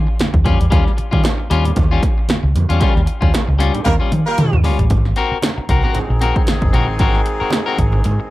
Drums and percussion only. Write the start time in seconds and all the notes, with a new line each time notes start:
0.20 snare, closed hi-hat, high conga
0.34 kick
0.45 kick, closed hi-hat, high conga
0.61 closed hi-hat
0.72 kick, closed hi-hat, muted conga
0.87 snare
0.98 closed hi-hat
1.13 kick
1.24 snare, closed hi-hat, high conga
1.51 snare, closed hi-hat
1.65 closed hi-hat, low conga
1.76 kick, closed hi-hat, muted conga
2.03 kick, snare, closed hi-hat, muted conga
2.29 snare, closed hi-hat, high conga
2.55 closed hi-hat, high conga
2.70 closed hi-hat
2.81 kick, closed hi-hat, muted conga
2.97 snare
3.07 closed hi-hat
3.22 kick
3.34 snare, closed hi-hat, high conga
3.60 snare, closed hi-hat
3.75 closed hi-hat, low conga
3.85 kick, snare, closed hi-hat, muted conga
4.12 closed hi-hat, high tom
4.38 closed hi-hat, mid tom, high conga
4.53 mid tom
4.64 floor tom, open hi-hat, high conga
4.79 closed hi-hat, floor tom
4.90 kick, closed hi-hat, muted conga
5.05 snare
5.16 closed hi-hat
5.42 snare, closed hi-hat, high conga
5.69 kick, snare, closed hi-hat
5.83 low conga
5.95 closed hi-hat, muted conga, low conga
6.20 snare, closed hi-hat, muted conga
6.36 kick
6.47 snare, closed hi-hat, high conga
6.62 kick
6.73 closed hi-hat, high conga
6.99 kick, closed hi-hat, muted conga
7.15 snare
7.26 closed hi-hat
7.50 snare, closed hi-hat, high conga
7.78 kick, closed hi-hat
7.92 low conga
8.04 closed hi-hat, muted conga